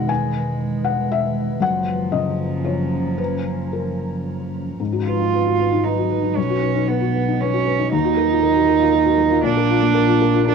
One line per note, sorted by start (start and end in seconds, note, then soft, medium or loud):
0.00 1.62 E1 medium
0.00 0.12 E2 medium
0.00 0.12 B2 soft
0.00 1.57 D#3 soft
0.00 1.61 D#3 medium
0.00 1.57 G#3 medium
0.00 1.63 G#3 medium
0.00 1.57 G#4 soft
0.00 1.57 B4 medium
0.00 0.11 E5 medium
0.00 0.12 F#5 medium
0.09 0.81 G#5 loud
0.84 1.08 F#5 medium
1.11 1.58 E5 medium
1.60 4.79 F#1 medium
1.60 3.14 F#2 medium
1.60 4.79 F3 medium
1.60 4.59 F3 medium
1.60 4.80 C#4 medium
1.60 2.09 F#5 medium
1.60 4.79 A#5 medium
2.12 2.97 C#3 medium
2.12 2.61 D#5 medium
2.65 4.75 C#4 soft
2.65 4.76 F4 soft
2.65 3.15 C#5 medium
3.18 3.68 B4 medium
3.73 4.49 A#4 soft
4.79 6.39 G#1 medium
4.79 6.33 G#2 medium
4.79 9.41 F#3 medium
4.79 7.89 D#4 medium
4.79 7.89 B4 medium
4.93 5.14 F#4 medium
5.06 5.86 F4 medium
5.06 5.28 B4 soft
5.20 5.41 D#4 soft
5.34 5.54 B4 soft
5.46 5.67 F#4 medium
5.60 5.80 B4 soft
5.72 5.93 D#4 soft
5.84 6.38 D#4 medium
5.84 6.06 B4 soft
5.98 6.19 F#4 medium
6.10 6.31 B4 soft
6.23 6.37 D#4 soft
6.36 7.89 B1 medium
6.36 7.94 B1 medium
6.36 6.90 C#4 medium
6.50 6.71 F#4 medium
6.62 6.83 B4 medium
6.75 6.96 D#4 medium
6.88 7.42 B3 medium
6.88 7.10 B4 medium
7.01 7.22 F#4 medium
7.14 7.36 B4 medium
7.28 7.49 D#4 medium
7.40 7.92 C#4 loud
7.40 7.61 B4 medium
7.53 7.74 F#4 medium
7.66 7.87 B4 medium
7.78 7.92 D#4 medium
7.90 9.41 D#2 medium
7.90 9.47 D#2 medium
7.90 9.43 D#4 loud
7.90 10.55 F4 medium
7.90 10.55 A#4 medium
8.04 8.25 F#4 medium
8.17 8.38 A#4 medium
8.30 8.51 F4 medium
8.42 8.63 A#4 medium
8.56 8.76 F#4 medium
8.68 8.89 A#4 medium
8.79 9.01 F4 medium
8.92 9.14 A#4 medium
9.05 9.27 F#4 medium
9.18 9.39 A#4 medium
9.30 9.44 F4 medium
9.43 10.55 A#1 medium
9.43 10.55 A#2 medium
9.43 10.55 F3 medium
9.43 10.46 D4 loud
9.57 9.78 A#4 medium
9.70 9.92 F4 medium
9.82 10.04 A#3 medium
9.94 10.16 A#4 medium
10.07 10.29 F4 medium
10.21 10.42 A#4 medium
10.34 10.55 F4 medium
10.48 10.55 D4 loud
10.48 10.55 A#4 medium